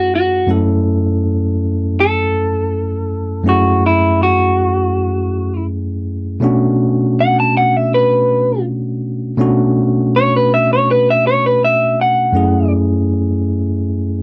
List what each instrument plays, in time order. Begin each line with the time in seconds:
Already playing: tine electric piano F#2 A3 C#4 E4 G#4, clean electric guitar F#4
0.15 clean electric guitar F#4
0.47 tine electric piano F#2 A3 C#4 E4 A4
2.00 clean electric guitar A4
3.44 tine electric piano F#2 A3 C#4 E4
3.48 clean electric guitar F#4, tine electric piano G#4
3.86 clean electric guitar E4
4.23 clean electric guitar F#4
6.40 tine electric piano B2 A3 C#4 D4 F#4
7.21 clean electric guitar F#5
7.40 clean electric guitar A5
7.57 clean electric guitar F#5
7.77 clean electric guitar E5
7.94 clean electric guitar B4
9.37 tine electric piano B2 A3 C#4 D4 F#4
10.16 clean electric guitar C#5
10.36 clean electric guitar B4
10.54 clean electric guitar E5
10.73 clean electric guitar C#5
10.91 clean electric guitar B4
11.10 clean electric guitar E5
11.27 clean electric guitar C#5
11.46 clean electric guitar B4
11.65 clean electric guitar E5
12.01 clean electric guitar F#5
12.32 tine electric piano F#2 A3 C#4 E4
12.37 tine electric piano G#4